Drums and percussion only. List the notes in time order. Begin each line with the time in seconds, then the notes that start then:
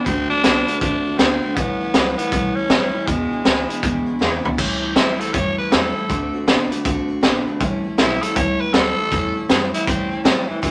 0.06 kick, closed hi-hat
0.44 snare, closed hi-hat
0.68 closed hi-hat
0.81 kick, closed hi-hat
1.19 snare, closed hi-hat
1.56 kick, closed hi-hat
1.94 snare, closed hi-hat
2.19 closed hi-hat
2.32 kick, closed hi-hat
2.70 snare, closed hi-hat
3.08 kick, closed hi-hat
3.45 snare, closed hi-hat
3.70 closed hi-hat
3.83 kick, closed hi-hat
4.21 snare
4.45 floor tom
4.58 kick, crash
4.96 snare, closed hi-hat
5.21 closed hi-hat
5.34 kick, closed hi-hat
5.72 snare, closed hi-hat
6.10 kick, closed hi-hat
6.48 snare, closed hi-hat
6.72 closed hi-hat
6.85 kick, closed hi-hat
7.23 snare, closed hi-hat
7.60 kick, closed hi-hat
7.98 snare, closed hi-hat
8.23 closed hi-hat
8.36 kick, closed hi-hat
8.74 snare, closed hi-hat
9.11 kick, closed hi-hat
9.49 snare, closed hi-hat
9.74 closed hi-hat
9.87 kick, closed hi-hat
10.25 snare, closed hi-hat
10.63 kick, closed hi-hat